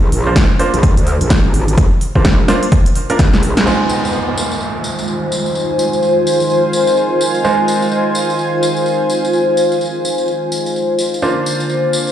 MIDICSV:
0, 0, Header, 1, 7, 480
1, 0, Start_track
1, 0, Tempo, 472441
1, 1804, Time_signature, 4, 2, 24, 8
1, 12313, End_track
2, 0, Start_track
2, 0, Title_t, "Ambient pad"
2, 0, Program_c, 0, 92
2, 3723, Note_on_c, 0, 65, 84
2, 3866, Note_on_c, 0, 72, 84
2, 3999, Note_on_c, 0, 80, 90
2, 11407, Note_on_c, 0, 70, 83
2, 11870, Note_on_c, 0, 77, 83
2, 12036, Note_on_c, 0, 86, 76
2, 12083, Note_on_c, 0, 84, 72
2, 12313, Note_off_c, 0, 65, 0
2, 12313, Note_off_c, 0, 70, 0
2, 12313, Note_off_c, 0, 72, 0
2, 12313, Note_off_c, 0, 77, 0
2, 12313, Note_off_c, 0, 80, 0
2, 12313, Note_off_c, 0, 84, 0
2, 12313, Note_off_c, 0, 86, 0
2, 12313, End_track
3, 0, Start_track
3, 0, Title_t, "Grand piano"
3, 0, Program_c, 1, 0
3, 269, Note_on_c, 1, 58, 77
3, 269, Note_on_c, 1, 62, 72
3, 269, Note_on_c, 1, 65, 71
3, 269, Note_on_c, 1, 72, 82
3, 335, Note_off_c, 1, 58, 0
3, 335, Note_off_c, 1, 62, 0
3, 335, Note_off_c, 1, 65, 0
3, 335, Note_off_c, 1, 72, 0
3, 604, Note_on_c, 1, 58, 77
3, 604, Note_on_c, 1, 62, 76
3, 604, Note_on_c, 1, 65, 72
3, 604, Note_on_c, 1, 72, 90
3, 760, Note_off_c, 1, 58, 0
3, 760, Note_off_c, 1, 62, 0
3, 760, Note_off_c, 1, 65, 0
3, 760, Note_off_c, 1, 72, 0
3, 2188, Note_on_c, 1, 58, 81
3, 2188, Note_on_c, 1, 62, 74
3, 2188, Note_on_c, 1, 65, 71
3, 2188, Note_on_c, 1, 72, 87
3, 2255, Note_off_c, 1, 58, 0
3, 2255, Note_off_c, 1, 62, 0
3, 2255, Note_off_c, 1, 65, 0
3, 2255, Note_off_c, 1, 72, 0
3, 2522, Note_on_c, 1, 62, 81
3, 2523, Note_on_c, 1, 58, 88
3, 2523, Note_on_c, 1, 65, 84
3, 2523, Note_on_c, 1, 72, 97
3, 2679, Note_off_c, 1, 62, 0
3, 2680, Note_off_c, 1, 58, 0
3, 2680, Note_off_c, 1, 65, 0
3, 2680, Note_off_c, 1, 72, 0
3, 3148, Note_on_c, 1, 58, 86
3, 3148, Note_on_c, 1, 62, 77
3, 3148, Note_on_c, 1, 65, 76
3, 3148, Note_on_c, 1, 70, 94
3, 3214, Note_off_c, 1, 65, 0
3, 3215, Note_off_c, 1, 58, 0
3, 3215, Note_off_c, 1, 62, 0
3, 3215, Note_off_c, 1, 70, 0
3, 3723, Note_on_c, 1, 56, 74
3, 3723, Note_on_c, 1, 63, 67
3, 3723, Note_on_c, 1, 65, 66
3, 3723, Note_on_c, 1, 72, 80
3, 7541, Note_off_c, 1, 56, 0
3, 7541, Note_off_c, 1, 63, 0
3, 7541, Note_off_c, 1, 65, 0
3, 7541, Note_off_c, 1, 72, 0
3, 7564, Note_on_c, 1, 56, 76
3, 7564, Note_on_c, 1, 63, 69
3, 7564, Note_on_c, 1, 65, 68
3, 7564, Note_on_c, 1, 72, 84
3, 11381, Note_off_c, 1, 56, 0
3, 11381, Note_off_c, 1, 63, 0
3, 11381, Note_off_c, 1, 65, 0
3, 11381, Note_off_c, 1, 72, 0
3, 11403, Note_on_c, 1, 58, 75
3, 11404, Note_on_c, 1, 62, 66
3, 11404, Note_on_c, 1, 65, 70
3, 11404, Note_on_c, 1, 72, 82
3, 12313, Note_off_c, 1, 58, 0
3, 12313, Note_off_c, 1, 62, 0
3, 12313, Note_off_c, 1, 65, 0
3, 12313, Note_off_c, 1, 72, 0
3, 12313, End_track
4, 0, Start_track
4, 0, Title_t, "Analog synth pad"
4, 0, Program_c, 2, 89
4, 3724, Note_on_c, 2, 65, 70
4, 3725, Note_on_c, 2, 51, 75
4, 3725, Note_on_c, 2, 56, 70
4, 3725, Note_on_c, 2, 72, 82
4, 11364, Note_off_c, 2, 51, 0
4, 11364, Note_off_c, 2, 56, 0
4, 11364, Note_off_c, 2, 72, 0
4, 11404, Note_on_c, 2, 50, 78
4, 11404, Note_on_c, 2, 58, 69
4, 11405, Note_on_c, 2, 72, 82
4, 12313, Note_off_c, 2, 50, 0
4, 12313, Note_off_c, 2, 58, 0
4, 12313, Note_off_c, 2, 65, 0
4, 12313, Note_off_c, 2, 72, 0
4, 12313, End_track
5, 0, Start_track
5, 0, Title_t, "Wobble bass"
5, 0, Program_c, 3, 39
5, 0, Note_on_c, 3, 34, 97
5, 109, Note_off_c, 3, 34, 0
5, 123, Note_on_c, 3, 34, 98
5, 348, Note_off_c, 3, 34, 0
5, 364, Note_on_c, 3, 36, 99
5, 486, Note_off_c, 3, 36, 0
5, 749, Note_on_c, 3, 34, 98
5, 966, Note_off_c, 3, 34, 0
5, 988, Note_on_c, 3, 38, 95
5, 1205, Note_off_c, 3, 38, 0
5, 1228, Note_on_c, 3, 34, 101
5, 1446, Note_off_c, 3, 34, 0
5, 1469, Note_on_c, 3, 32, 103
5, 1788, Note_off_c, 3, 32, 0
5, 1804, Note_on_c, 3, 34, 98
5, 1926, Note_off_c, 3, 34, 0
5, 2189, Note_on_c, 3, 34, 92
5, 2269, Note_off_c, 3, 34, 0
5, 2283, Note_on_c, 3, 34, 99
5, 2509, Note_off_c, 3, 34, 0
5, 3243, Note_on_c, 3, 34, 99
5, 3366, Note_off_c, 3, 34, 0
5, 3388, Note_on_c, 3, 34, 96
5, 3708, Note_off_c, 3, 34, 0
5, 12313, End_track
6, 0, Start_track
6, 0, Title_t, "Downlifter"
6, 0, Program_c, 4, 103
6, 3723, Note_on_c, 4, 60, 70
6, 7563, Note_off_c, 4, 60, 0
6, 12313, End_track
7, 0, Start_track
7, 0, Title_t, "Drums"
7, 125, Note_on_c, 9, 46, 103
7, 226, Note_off_c, 9, 46, 0
7, 364, Note_on_c, 9, 36, 115
7, 364, Note_on_c, 9, 38, 113
7, 365, Note_on_c, 9, 42, 70
7, 465, Note_off_c, 9, 38, 0
7, 466, Note_off_c, 9, 36, 0
7, 466, Note_off_c, 9, 42, 0
7, 604, Note_on_c, 9, 46, 87
7, 706, Note_off_c, 9, 46, 0
7, 749, Note_on_c, 9, 42, 55
7, 844, Note_off_c, 9, 42, 0
7, 844, Note_on_c, 9, 36, 112
7, 844, Note_on_c, 9, 42, 65
7, 946, Note_off_c, 9, 36, 0
7, 946, Note_off_c, 9, 42, 0
7, 990, Note_on_c, 9, 42, 55
7, 1084, Note_on_c, 9, 46, 98
7, 1091, Note_off_c, 9, 42, 0
7, 1186, Note_off_c, 9, 46, 0
7, 1229, Note_on_c, 9, 42, 58
7, 1324, Note_off_c, 9, 42, 0
7, 1324, Note_on_c, 9, 36, 109
7, 1324, Note_on_c, 9, 38, 116
7, 1324, Note_on_c, 9, 42, 70
7, 1425, Note_off_c, 9, 38, 0
7, 1426, Note_off_c, 9, 36, 0
7, 1426, Note_off_c, 9, 42, 0
7, 1564, Note_on_c, 9, 46, 89
7, 1665, Note_off_c, 9, 46, 0
7, 1710, Note_on_c, 9, 42, 55
7, 1804, Note_off_c, 9, 42, 0
7, 1804, Note_on_c, 9, 36, 116
7, 1804, Note_on_c, 9, 42, 72
7, 1905, Note_off_c, 9, 36, 0
7, 1906, Note_off_c, 9, 42, 0
7, 2044, Note_on_c, 9, 46, 100
7, 2146, Note_off_c, 9, 46, 0
7, 2189, Note_on_c, 9, 36, 60
7, 2283, Note_on_c, 9, 38, 115
7, 2284, Note_off_c, 9, 36, 0
7, 2284, Note_on_c, 9, 36, 116
7, 2284, Note_on_c, 9, 42, 70
7, 2385, Note_off_c, 9, 36, 0
7, 2385, Note_off_c, 9, 38, 0
7, 2386, Note_off_c, 9, 42, 0
7, 2523, Note_on_c, 9, 38, 62
7, 2523, Note_on_c, 9, 46, 88
7, 2624, Note_off_c, 9, 38, 0
7, 2625, Note_off_c, 9, 46, 0
7, 2669, Note_on_c, 9, 42, 52
7, 2762, Note_off_c, 9, 42, 0
7, 2762, Note_on_c, 9, 42, 71
7, 2763, Note_on_c, 9, 36, 119
7, 2864, Note_off_c, 9, 42, 0
7, 2865, Note_off_c, 9, 36, 0
7, 2907, Note_on_c, 9, 42, 55
7, 3002, Note_on_c, 9, 46, 101
7, 3009, Note_off_c, 9, 42, 0
7, 3104, Note_off_c, 9, 46, 0
7, 3147, Note_on_c, 9, 42, 57
7, 3242, Note_off_c, 9, 42, 0
7, 3242, Note_on_c, 9, 38, 65
7, 3242, Note_on_c, 9, 42, 70
7, 3243, Note_on_c, 9, 36, 114
7, 3343, Note_off_c, 9, 38, 0
7, 3343, Note_off_c, 9, 42, 0
7, 3345, Note_off_c, 9, 36, 0
7, 3388, Note_on_c, 9, 38, 64
7, 3483, Note_on_c, 9, 46, 83
7, 3490, Note_off_c, 9, 38, 0
7, 3584, Note_off_c, 9, 46, 0
7, 3628, Note_on_c, 9, 38, 81
7, 3628, Note_on_c, 9, 42, 53
7, 3728, Note_on_c, 9, 54, 33
7, 3729, Note_off_c, 9, 38, 0
7, 3729, Note_off_c, 9, 42, 0
7, 3830, Note_off_c, 9, 54, 0
7, 3956, Note_on_c, 9, 54, 74
7, 4057, Note_off_c, 9, 54, 0
7, 4113, Note_on_c, 9, 54, 45
7, 4196, Note_off_c, 9, 54, 0
7, 4196, Note_on_c, 9, 54, 37
7, 4297, Note_off_c, 9, 54, 0
7, 4445, Note_on_c, 9, 54, 88
7, 4547, Note_off_c, 9, 54, 0
7, 4588, Note_on_c, 9, 54, 44
7, 4679, Note_off_c, 9, 54, 0
7, 4679, Note_on_c, 9, 54, 37
7, 4781, Note_off_c, 9, 54, 0
7, 4917, Note_on_c, 9, 54, 77
7, 5018, Note_off_c, 9, 54, 0
7, 5066, Note_on_c, 9, 54, 45
7, 5159, Note_off_c, 9, 54, 0
7, 5159, Note_on_c, 9, 54, 35
7, 5261, Note_off_c, 9, 54, 0
7, 5402, Note_on_c, 9, 54, 79
7, 5504, Note_off_c, 9, 54, 0
7, 5549, Note_on_c, 9, 54, 47
7, 5641, Note_off_c, 9, 54, 0
7, 5641, Note_on_c, 9, 54, 38
7, 5743, Note_off_c, 9, 54, 0
7, 5883, Note_on_c, 9, 54, 90
7, 5984, Note_off_c, 9, 54, 0
7, 6027, Note_on_c, 9, 54, 53
7, 6123, Note_off_c, 9, 54, 0
7, 6123, Note_on_c, 9, 54, 39
7, 6225, Note_off_c, 9, 54, 0
7, 6367, Note_on_c, 9, 54, 86
7, 6469, Note_off_c, 9, 54, 0
7, 6504, Note_on_c, 9, 54, 52
7, 6603, Note_off_c, 9, 54, 0
7, 6603, Note_on_c, 9, 54, 36
7, 6704, Note_off_c, 9, 54, 0
7, 6839, Note_on_c, 9, 54, 82
7, 6941, Note_off_c, 9, 54, 0
7, 6983, Note_on_c, 9, 54, 53
7, 7082, Note_off_c, 9, 54, 0
7, 7082, Note_on_c, 9, 54, 34
7, 7183, Note_off_c, 9, 54, 0
7, 7323, Note_on_c, 9, 54, 88
7, 7424, Note_off_c, 9, 54, 0
7, 7462, Note_on_c, 9, 54, 47
7, 7564, Note_off_c, 9, 54, 0
7, 7565, Note_on_c, 9, 54, 39
7, 7667, Note_off_c, 9, 54, 0
7, 7803, Note_on_c, 9, 54, 89
7, 7904, Note_off_c, 9, 54, 0
7, 7948, Note_on_c, 9, 54, 51
7, 8042, Note_off_c, 9, 54, 0
7, 8042, Note_on_c, 9, 54, 35
7, 8143, Note_off_c, 9, 54, 0
7, 8280, Note_on_c, 9, 54, 97
7, 8381, Note_off_c, 9, 54, 0
7, 8432, Note_on_c, 9, 54, 47
7, 8524, Note_off_c, 9, 54, 0
7, 8524, Note_on_c, 9, 54, 41
7, 8626, Note_off_c, 9, 54, 0
7, 8766, Note_on_c, 9, 54, 81
7, 8867, Note_off_c, 9, 54, 0
7, 8905, Note_on_c, 9, 54, 46
7, 9001, Note_off_c, 9, 54, 0
7, 9001, Note_on_c, 9, 54, 40
7, 9102, Note_off_c, 9, 54, 0
7, 9241, Note_on_c, 9, 54, 88
7, 9343, Note_off_c, 9, 54, 0
7, 9393, Note_on_c, 9, 54, 51
7, 9482, Note_off_c, 9, 54, 0
7, 9482, Note_on_c, 9, 54, 35
7, 9584, Note_off_c, 9, 54, 0
7, 9724, Note_on_c, 9, 54, 82
7, 9826, Note_off_c, 9, 54, 0
7, 9874, Note_on_c, 9, 54, 46
7, 9967, Note_off_c, 9, 54, 0
7, 9967, Note_on_c, 9, 54, 36
7, 10068, Note_off_c, 9, 54, 0
7, 10209, Note_on_c, 9, 54, 88
7, 10311, Note_off_c, 9, 54, 0
7, 10342, Note_on_c, 9, 54, 44
7, 10442, Note_off_c, 9, 54, 0
7, 10442, Note_on_c, 9, 54, 38
7, 10544, Note_off_c, 9, 54, 0
7, 10687, Note_on_c, 9, 54, 88
7, 10789, Note_off_c, 9, 54, 0
7, 10834, Note_on_c, 9, 54, 52
7, 10933, Note_off_c, 9, 54, 0
7, 10933, Note_on_c, 9, 54, 37
7, 11034, Note_off_c, 9, 54, 0
7, 11161, Note_on_c, 9, 54, 77
7, 11263, Note_off_c, 9, 54, 0
7, 11320, Note_on_c, 9, 54, 47
7, 11401, Note_off_c, 9, 54, 0
7, 11401, Note_on_c, 9, 54, 36
7, 11503, Note_off_c, 9, 54, 0
7, 11647, Note_on_c, 9, 54, 91
7, 11748, Note_off_c, 9, 54, 0
7, 11787, Note_on_c, 9, 54, 52
7, 11881, Note_off_c, 9, 54, 0
7, 11881, Note_on_c, 9, 54, 39
7, 11983, Note_off_c, 9, 54, 0
7, 12123, Note_on_c, 9, 54, 92
7, 12225, Note_off_c, 9, 54, 0
7, 12265, Note_on_c, 9, 54, 45
7, 12313, Note_off_c, 9, 54, 0
7, 12313, End_track
0, 0, End_of_file